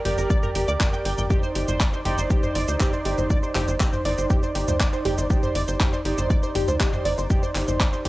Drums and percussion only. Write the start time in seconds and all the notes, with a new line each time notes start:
0.05 mid tom, open hi-hat
0.18 shaker
0.30 kick, shaker
0.43 mid tom, shaker
0.55 open hi-hat
0.68 shaker
0.80 kick, clap, mid tom, shaker
0.93 shaker
1.05 open hi-hat
1.18 mid tom, shaker
1.30 kick, mid tom, shaker
1.43 shaker
1.55 open hi-hat
1.68 mid tom, shaker
1.80 kick, clap, shaker
1.93 shaker
2.05 mid tom, open hi-hat
2.18 shaker
2.30 kick, shaker
2.43 mid tom, shaker
2.55 open hi-hat
2.68 shaker
2.80 kick, clap, mid tom, shaker
2.93 shaker
3.05 open hi-hat
3.18 mid tom, shaker
3.30 kick, shaker
3.43 shaker
3.55 clap, mid tom, open hi-hat
3.68 shaker
3.80 kick, clap, shaker
3.93 mid tom, shaker
4.05 open hi-hat
4.18 shaker
4.30 kick, mid tom, shaker
4.43 shaker
4.55 open hi-hat
4.68 mid tom, shaker
4.80 kick, clap, shaker
4.93 shaker
5.05 mid tom, open hi-hat
5.18 shaker
5.30 kick, shaker
5.43 mid tom, shaker
5.55 open hi-hat
5.68 shaker
5.80 kick, clap, mid tom, shaker
5.93 shaker
6.05 open hi-hat
6.18 mid tom, shaker
6.30 kick, shaker
6.43 shaker
6.55 mid tom, open hi-hat
6.68 shaker
6.80 kick, clap, shaker
6.93 mid tom, shaker
7.05 open hi-hat
7.18 shaker
7.30 kick, mid tom, shaker
7.43 shaker
7.55 clap, open hi-hat
7.68 mid tom, shaker
7.80 kick, clap, shaker
7.93 shaker
8.05 mid tom, open hi-hat